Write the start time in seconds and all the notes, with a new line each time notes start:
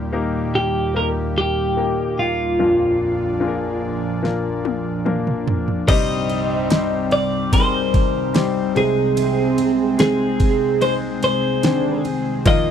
Already playing: D#2 A#2 G3 A#3 D#4 G4 A#4
0.13 A#3 D#4 G4 A#4
0.55 G4
0.94 A#3 D#4 F4 A#4
1.02 G4
1.38 G4
1.77 A#3 D#4 G4 A#4
2.19 F4
2.59 A#1 F2 A#2 F3 A#3 D4 F4 A#4
3.40 A#3 D4 F4 G#4
3.48 A#4
4.23 A#3 D4 F4 A#4, snare
4.65 high tom
5.05 A#3 D4 F4 A#4, mid tom
5.27 mid tom
5.47 floor tom
5.68 floor tom
5.88 C2 G2 C3 G3 C4 D#4 G4 C5 D#5, kick, crash, ride
6.29 D#4, ride
6.70 G3 C4 D#4 G4 C5, snare, ride
7.11 D#4 D5, ride
7.52 G3 C4 D#4 G4 G#4 C5, kick, ride
7.60 A#4
7.94 D#3 D#4 G4, kick, ride
8.34 G3 C4 D#4 G4 C5, snare, ride
8.75 C2 C3 G#3 C4 D#4 G#4 C5, ride
9.16 C3 G#4, ride
9.58 C4, ride
9.98 G#3 C4 D#4 G#4 C5, snare, ride
10.40 C4, kick, ride
10.80 G#3 C4 D#4 G#4 C5, ride
11.23 G#4 C5, ride
11.63 D3 D#3 G#3 C4 D4 G#4 C5, snare, ride
12.04 G#4, ride
12.45 D#2 A#2 D#3 F3 A#3 D#4 F4 A#4 D#5, kick, ride